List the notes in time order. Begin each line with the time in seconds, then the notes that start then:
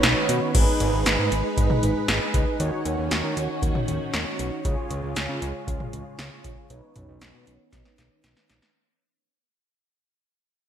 Already playing: D#3 B3 C#4 D#4 F#4 B4 C#5
0.03 B1, snare, closed hi-hat
0.29 B2, closed hi-hat
0.55 G#1 G#3 D#4 G#4 B4, kick, closed hi-hat, crash
0.80 G#1, closed hi-hat
0.93 G#1
1.06 G#1, snare, closed hi-hat
1.19 G#2
1.32 G#1, closed hi-hat
1.57 G#1, kick, closed hi-hat
1.70 mid tom
1.83 G#1, closed hi-hat
2.08 G#1, snare, closed hi-hat
2.34 C#2, kick, closed hi-hat
2.60 D#2 D#3 C#4 D#4 F#4 C#5, closed hi-hat
2.85 D#2, closed hi-hat
2.98 D#2
3.11 D#2, snare, closed hi-hat
3.24 D#3
3.37 D#2, closed hi-hat
3.62 D#2, kick, closed hi-hat
3.75 mid tom
3.88 D#2, closed hi-hat
4.14 D#2, snare, closed hi-hat
4.39 B1, closed hi-hat
4.65 C#2 C#3 G#3 F4 G#4 C#5, kick, closed hi-hat
4.91 C#2, closed hi-hat
5.03 C#2
5.16 C#2, snare, closed hi-hat
5.29 C#3
5.42 C#2, closed hi-hat
5.67 C#2, kick, closed hi-hat
5.80 mid tom
5.93 C#2, closed hi-hat
6.19 C#2, snare, closed hi-hat
6.44 A#1, kick, closed hi-hat
6.70 B1 D#3 B3 C#4 D#4 B4 C#5, closed hi-hat
6.96 B1, closed hi-hat, mid tom
7.09 B1
7.21 B1, snare, closed hi-hat
7.34 B2
7.47 B1, closed hi-hat
7.73 B1, kick, snare, closed hi-hat
7.85 snare
7.98 B1, snare, closed hi-hat
8.24 B1, snare, closed hi-hat
8.37 snare
8.50 A#1, snare, closed hi-hat
8.62 snare